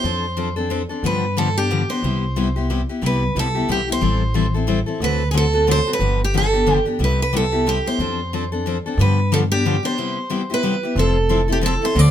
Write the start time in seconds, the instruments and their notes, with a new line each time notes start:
Already playing: steel-string acoustic guitar C5
0.04 upright bass F2, steel-string acoustic guitar F3 C4 D4 A4
0.37 steel-string acoustic guitar F3 C4 D4 A4
0.56 steel-string acoustic guitar C4 D4 A4
0.70 steel-string acoustic guitar F3 C4 D4 A4
0.89 steel-string acoustic guitar C4 D4 A4
1.03 upright bass G2, steel-string acoustic guitar D3 F3 B3 D4 G4 B4
1.37 steel-string acoustic guitar D3 F3 B3 D4 G4 A4
1.57 steel-string acoustic guitar B3 D4 G4
1.70 steel-string acoustic guitar D3 F3 B3 D4 G4
1.89 steel-string acoustic guitar B3 D4 G4 C5
2.03 upright bass C2, steel-string acoustic guitar C3 G3 B3 E4 G4
2.36 steel-string acoustic guitar C3 G3 B3 E4 G4
2.56 steel-string acoustic guitar B3 E4 G4
2.70 steel-string acoustic guitar C3 G3 B3 E4 G4
2.89 steel-string acoustic guitar B3 E4 G4
3.02 upright bass C2, steel-string acoustic guitar C3 G3 B3 E4 G4
3.06 steel-string acoustic guitar B4
3.35 upright bass C2, steel-string acoustic guitar C3 G3 B3 E4 G4
3.39 steel-string acoustic guitar A4
3.55 steel-string acoustic guitar B3 E4 G4
3.69 upright bass B1, steel-string acoustic guitar C3 G3 B3 E4 G4
3.88 steel-string acoustic guitar B3 E4 G4
3.92 steel-string acoustic guitar C5
4.01 upright bass A1, steel-string acoustic guitar E3 G3 C4 E4 A4
4.34 steel-string acoustic guitar E3 G3 C4 E4 A4
4.54 steel-string acoustic guitar C4 E4 A4
4.67 steel-string acoustic guitar E3 G3 C4 E4 A4
4.86 steel-string acoustic guitar C4 E4 A4
5.00 upright bass D2, steel-string acoustic guitar D3 A3 C4 F#4 A4 B4
5.31 steel-string acoustic guitar D3 A3 C4 F#4 G#4 A4
5.38 steel-string acoustic guitar A4
5.53 steel-string acoustic guitar C4 F#4 A4
5.67 steel-string acoustic guitar D3 A3 C4 F#4 A4
5.71 steel-string acoustic guitar C5
5.87 steel-string acoustic guitar C4 F#4 A4
5.93 steel-string acoustic guitar B4
5.99 upright bass G1, steel-string acoustic guitar D3 F3 B3 D4 G4
6.24 steel-string acoustic guitar G4
6.34 steel-string acoustic guitar D3 F3 B3 D4 G4 A4
6.53 steel-string acoustic guitar B3 D4 G4
6.67 steel-string acoustic guitar D3 F3 B3 D4 G4
6.86 steel-string acoustic guitar B3 D4 G4
6.99 upright bass C2, steel-string acoustic guitar C3 G3 B3 E4 G4
7.04 steel-string acoustic guitar B4
7.22 steel-string acoustic guitar B4
7.33 steel-string acoustic guitar C3 G3 B3 E4 G4 A4
7.52 steel-string acoustic guitar B3 E4 G4
7.66 steel-string acoustic guitar C3 G3 B3 E4 G4
7.86 steel-string acoustic guitar B3 E4 G4 C5
7.99 upright bass F2, steel-string acoustic guitar F3 C4 D4 A4
8.33 steel-string acoustic guitar F3 C4 D4 A4
8.52 steel-string acoustic guitar C4 D4 A4
8.66 steel-string acoustic guitar F3 C4 D4 A4
8.86 steel-string acoustic guitar C4 D4 A4
8.98 upright bass G2, steel-string acoustic guitar D3 F3 B3 D4 G4 B4
9.32 steel-string acoustic guitar D3 F3 B3 D4 G4 A4
9.52 steel-string acoustic guitar B3 D4 G4
9.65 steel-string acoustic guitar D3 F3 B3 D4 G4
9.83 steel-string acoustic guitar B3 D4 G4 C5
9.98 steel-string acoustic guitar C3 G3 B3 E4 G4
10.30 steel-string acoustic guitar C3 G3 B3 E4 G4
10.50 steel-string acoustic guitar B3 E4 G4
10.54 steel-string acoustic guitar B4
10.63 steel-string acoustic guitar C3 G3 B3 E4 G4
10.83 steel-string acoustic guitar B3 E4 G4
10.96 upright bass F1, steel-string acoustic guitar F3 C4 E4 A4
11.29 steel-string acoustic guitar F3 C4 E4 A4
11.48 steel-string acoustic guitar C4 E4 A4
11.52 steel-string acoustic guitar G4
11.61 steel-string acoustic guitar F3 C4 E4 A4
11.66 steel-string acoustic guitar A4
11.82 steel-string acoustic guitar C4 E4 A4 C5
11.95 upright bass D2, steel-string acoustic guitar D3 F3 C4 D4 A4 D5